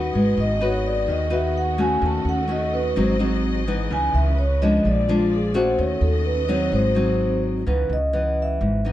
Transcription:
0.00 0.11 D#3 medium
0.00 0.13 C#4 medium
0.00 0.57 D#4 medium
0.00 0.57 F#4 medium
0.00 0.13 G4 medium
0.00 0.57 B4 medium
0.00 2.00 D#5 medium
0.00 0.11 E5 medium
0.13 0.35 G#1 medium
0.13 1.06 G#3 medium
0.13 2.00 B3 medium
0.13 3.86 F#4 medium
0.13 2.00 G#4 medium
0.13 0.37 B4 medium
0.37 1.04 G#1 loud
0.37 0.61 D#5 medium
0.61 1.27 D#4 medium
0.61 1.27 F#4 medium
0.61 1.28 B4 medium
0.61 0.85 C#5 medium
0.87 1.08 D5 medium
1.07 1.97 D#2 medium
1.07 2.00 D#3 medium
1.07 1.32 D#5 medium
1.30 1.74 D#4 medium
1.30 1.74 F#4 medium
1.30 1.74 B4 medium
1.30 1.55 E5 medium
1.58 1.79 F#5 medium
1.78 2.45 A3 medium
1.78 2.45 C#4 medium
1.78 2.45 F#4 medium
1.78 2.02 G#5 medium
2.01 2.24 D#2 medium
2.01 2.94 D#3 medium
2.01 2.94 C#4 medium
2.01 2.94 A4 medium
2.01 4.81 D#5 medium
2.06 2.27 A5 medium
2.25 2.92 D#2 medium
2.29 2.50 F#5 medium
2.48 2.93 A3 soft
2.48 2.94 C#4 medium
2.48 2.94 F#4 medium
2.48 2.73 D#5 medium
2.74 2.96 B4 medium
2.96 3.86 G#1 medium
2.96 3.88 G#2 medium
2.96 3.16 F#3 medium
2.96 3.16 C4 medium
2.96 3.90 C4 medium
2.96 3.16 D#4 medium
2.96 3.90 G#4 medium
2.96 3.13 C5 medium
3.19 3.63 F#3 medium
3.19 3.63 C4 medium
3.19 3.63 D#4 medium
3.67 4.34 E3 medium
3.67 4.34 B3 medium
3.67 4.34 D#4 medium
3.89 4.12 C#2 loud
3.89 4.82 C#3 medium
3.89 4.83 C#4 medium
3.89 4.83 B4 medium
3.89 4.14 G#5 medium
4.14 4.81 C#2 loud
4.14 4.37 E5 medium
4.38 4.61 C#5 medium
4.62 5.05 F3 medium
4.62 5.05 G#3 medium
4.62 5.05 D4 medium
4.62 4.84 D#5 loud
4.85 5.75 A#1 medium
4.85 5.77 A#2 medium
4.85 5.78 A#3 medium
4.85 5.78 F4 medium
4.85 5.78 G#4 medium
4.85 5.78 D5 medium
4.85 5.08 D5 medium
5.09 5.51 F3 medium
5.09 5.52 G#3 medium
5.09 5.52 D4 medium
5.09 5.32 F4 medium
5.34 5.55 G#4 medium
5.54 6.45 A3 medium
5.54 6.45 C#4 medium
5.54 6.45 F#4 medium
5.54 5.78 C5 loud
5.78 6.00 D#2 medium
5.78 6.48 D#3 medium
5.78 6.72 C#4 medium
5.78 7.65 F#4 medium
5.78 6.72 A4 medium
5.78 6.01 C#5 medium
5.78 7.65 D#5 medium
6.01 6.68 D#2 medium
6.01 6.25 A4 medium
6.26 6.48 B4 medium
6.48 6.92 F#3 medium
6.48 6.92 C4 medium
6.48 6.92 D#4 medium
6.48 6.72 C#5 loud
6.72 7.62 G#1 loud
6.72 7.64 G#2 medium
6.72 7.66 C4 medium
6.72 7.66 G#4 medium
6.72 7.39 C5 medium
6.95 7.62 F#3 medium
6.95 7.63 C4 medium
6.95 7.63 D#4 medium
7.67 7.88 C#2 medium
7.67 8.58 C#3 medium
7.67 7.97 E3 soft
7.67 7.97 B3 medium
7.67 7.97 D#4 medium
7.67 7.91 B4 medium
7.90 8.56 C#2 medium
7.90 8.40 D#5 medium
8.13 8.80 E3 medium
8.13 8.80 B3 medium
8.42 8.84 E5 loud
8.61 8.92 G#1 medium
8.61 8.92 G#2 medium
8.85 8.92 E3 medium
8.85 8.92 B3 medium
8.85 8.92 D#4 medium

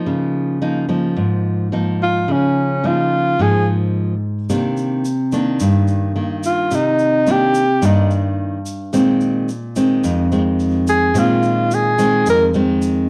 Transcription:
0.00 0.60 F3 medium
0.00 0.61 A#3 medium
0.00 0.61 D#4 medium
0.06 1.14 C#3 medium
0.62 0.85 F3 medium
0.62 0.85 A#3 medium
0.62 0.85 D#4 medium
0.89 1.68 F3 medium
0.89 1.68 A#3 medium
0.89 1.68 D#4 medium
1.17 2.25 G#2 medium
1.72 2.79 F3 medium
1.72 2.79 A#3 medium
1.72 2.79 D#4 medium
2.03 2.33 F4 medium
2.28 3.36 C#3 medium
2.28 2.88 C#4 medium
2.84 3.34 F3 medium
2.84 3.35 A#3 medium
2.84 3.35 D#4 medium
2.84 3.43 F4 medium
3.39 4.47 G#2 medium
3.39 4.13 F3 medium
3.39 4.14 A#3 medium
3.39 4.14 D#4 medium
3.39 3.68 G#4 medium
4.49 5.58 C3 medium
4.49 5.05 D#3 medium
4.49 5.05 A#3 medium
4.49 5.05 D4 medium
4.49 shaker medium
4.77 shaker soft
5.05 shaker medium
5.32 6.12 D#3 medium
5.32 6.12 A#3 medium
5.32 6.12 D4 medium
5.32 shaker medium
5.60 6.69 G2 medium
5.60 shaker medium
5.88 shaker soft
6.16 7.22 D#3 medium
6.16 7.23 A#3 soft
6.43 6.77 F4 medium
6.43 shaker medium
6.71 7.80 C3 medium
6.71 shaker medium
6.75 7.33 D#4 medium
6.99 shaker soft
7.26 7.62 D#3 soft
7.26 7.63 A#3 medium
7.26 7.63 D4 medium
7.26 shaker medium
7.31 7.87 G4 loud
7.54 shaker medium
7.82 8.90 G2 medium
7.82 8.57 D#3 medium
7.82 8.57 A#3 medium
7.82 8.57 D4 medium
7.82 shaker medium
7.86 8.12 D#4 medium
8.11 shaker soft
8.66 shaker medium
8.93 10.01 A#2 medium
8.93 9.48 D#3 medium
8.93 9.48 G#3 medium
8.93 9.49 C4 medium
8.93 shaker medium
9.21 shaker soft
9.48 shaker medium
9.76 10.27 D#3 medium
9.76 10.27 G#3 medium
9.76 10.28 C4 medium
9.76 shaker medium
10.04 11.12 F2 medium
10.04 shaker medium
10.32 11.11 D#3 medium
10.32 11.11 G#3 medium
10.32 11.11 C4 medium
10.32 shaker soft
10.59 shaker medium
10.87 11.20 G#4 loud
10.87 shaker medium
11.14 12.23 A#2 medium
11.14 11.94 D#3 medium
11.14 11.94 G#3 medium
11.14 11.94 C4 medium
11.14 11.76 F4 medium
11.14 shaker medium
11.43 shaker soft
11.71 12.28 G#4 medium
11.71 shaker medium
11.98 12.49 D#3 medium
11.98 12.50 G#3 medium
11.98 12.50 C4 medium
11.98 shaker medium
12.26 13.09 F2 medium
12.26 12.45 A#4 medium
12.26 shaker medium
12.54 13.09 D#3 medium
12.54 13.09 G#3 medium
12.54 13.09 C4 medium
12.54 shaker soft
12.82 shaker medium

